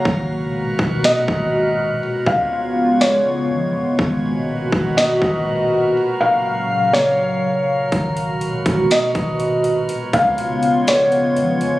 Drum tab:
HH |--------|--------|--------|--------|
SD |----o---|----o---|----o---|----o---|
BD |o--o-o--|-o------|o--o-o--|--------|

HH |xxxxxxxx|xxxxxxxx|
SD |----o---|----o---|
BD |o--o-o--|-o------|